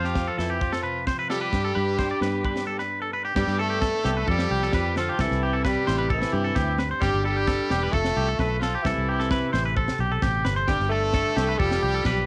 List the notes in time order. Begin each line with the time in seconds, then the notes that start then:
Already playing: F2 F3 F4
0.04 G4, snare
0.15 kick, snare
0.28 A4
0.37 F2 E3 E4 F4 A4, snare
0.50 G4
0.61 F3 F4, kick, snare
0.72 A4, snare
0.83 C3 B4
1.07 C5, kick, snare
1.19 B4
1.30 G3 F4 G4 A4, snare
1.41 B4
1.52 G2, kick, snare
1.65 A4
1.75 G2 D4 B4
1.99 D4 C5, kick, snare
2.11 D5
2.21 G2 B3 B4, snare
2.44 D4 B4, kick
2.56 snare
2.66 G2 A4
2.79 B4, snare
3.02 A4
3.13 B4
3.25 G4
3.35 G2 G3 B3 D4 G4, muted nylon-string guitar stroke, kick, snare, crash
3.47 G2, snare
3.59 A3 A4
3.70 G4
3.81 A4, kick, snare
4.04 C2 B3 D4 G4, snare
4.17 B4
4.27 F2 F3 G3 F4 G4 A4, kick
4.39 snare
4.51 C2 G4
4.62 A4, snare
4.73 F2 B4, kick, snare
4.96 D3 F3 F4 A4, snare
5.09 G4
5.18 C2 C3 E3 C4 E4 A4, kick, snare
5.31 C2, snare
5.43 G4
5.53 A4
5.65 G3 G4 B4, kick, snare
5.87 A1 E4 C5, snare
5.98 B4
6.10 E3 C4 E4 A4, kick
6.22 snare
6.32 G2 G4
6.44 A4
6.55 D2 G2 C4 G4, kick, snare
6.79 G4 B4, snare
6.91 C5
7.01 G1 G2 G3 D4 G4, kick, snare
7.14 G1
7.24 G3 G4 A4
7.37 G4
7.47 A4, kick, snare
7.70 E1 B3 D4 G4, snare
7.83 B4
7.91 F1 A3 F4 A4, muted nylon-string guitar stroke, kick, snare
8.05 snare
8.17 C2 G4
8.29 A4
8.39 B1 B4, kick, snare
8.60 F3 F4 A4, snare
8.75 G4
8.82 C2 C3 E3 C4 E4 A4, kick, snare
8.97 C2
9.09 G4
9.20 A4, snare
9.31 B4, kick, snare
9.53 A1 C5, muted nylon-string guitar stroke, snare
9.66 B4
9.76 A4 C5, kick
9.88 snare
9.99 B1 G4
10.12 A4
10.22 A1 B2 G4, kick, snare
10.45 G1 A2 B4, snare
10.56 C5
10.67 G1 G2 G3 B3 D4 G4, kick, snare
10.80 G1, snare
10.89 A3 A4
11.13 D3 A4, kick, snare
11.36 C2 G4, muted nylon-string guitar stroke, snare
11.49 B4
11.58 F1 F3 G3 F4 G4 A4, kick
11.71 snare
11.83 C2 G4
11.94 A4
12.05 B1 B4, kick, snare